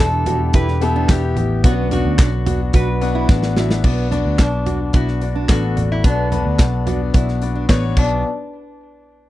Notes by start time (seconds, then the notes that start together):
Already playing: B2 D3 D4 G4
0.00 E1 B3 E4 A4
0.26 B3 E4 F#4 G4, closed hi-hat, floor tom
0.53 E1 B3 E4 G4 B4, kick, closed hi-hat
0.68 snare
0.81 B3 E4 G4 A4, closed hi-hat
0.96 D4
1.09 E1 B3 E4 G4, kick, snare, clap, closed hi-hat
1.37 A1 B3 E4 G4, closed hi-hat, floor tom
1.64 B1 D3 B3 C#4 D4 F#4, kick, closed hi-hat
1.91 B3 D4 F#4, closed hi-hat, floor tom
2.05 D2
2.18 B1 B3 D4 F#4, kick, snare, clap, closed hi-hat
2.46 B3 D4 F#4, closed hi-hat, floor tom
2.73 B1 B2 B3 D4 F#4 B4, kick, closed hi-hat
3.01 B3 D4 F#4, closed hi-hat
3.15 E4
3.29 A1 B3 D4 F#4, kick, snare
3.43 snare
3.56 A1 B3 D4 E4 F#4, snare
3.71 snare
3.84 B1 B3 D4 F#4 D5, kick, crash
4.11 B3 D4 F#4 D5, closed hi-hat, floor tom
4.25 D2
4.39 B1 B3 D4 F#4, kick, snare, clap, closed hi-hat
4.66 B3 D4 F#4 D5, closed hi-hat, floor tom
4.93 B1 B3 D4 E4 F#4 D5, kick, closed hi-hat
5.08 snare
5.21 B3 D4 F#4 D5, closed hi-hat
5.35 D4
5.49 A1 B3 D4 F#4 A4, kick, snare, clap, closed hi-hat
5.76 A1 B3 D4 F#4 D5, closed hi-hat, floor tom
5.92 E4
6.04 B1 B3 D4 F#4 B4, kick, closed hi-hat
6.31 B3 D4 F#4 B4, closed hi-hat, floor tom
6.46 D2
6.59 B1 B3 D4 F#4 B4, kick, snare, clap, closed hi-hat
6.86 B3 D4 F#4 D5, closed hi-hat, floor tom
7.14 B1 B3 D4 E4 F#4 D5, kick, closed hi-hat
7.28 snare
7.42 B3 D4 F#4 D5, closed hi-hat
7.55 D4
7.69 A1 B3 D4 F#4 C#5, kick, snare, clap, closed hi-hat
7.97 B1 B3 D4 F#4 D5, kick, crash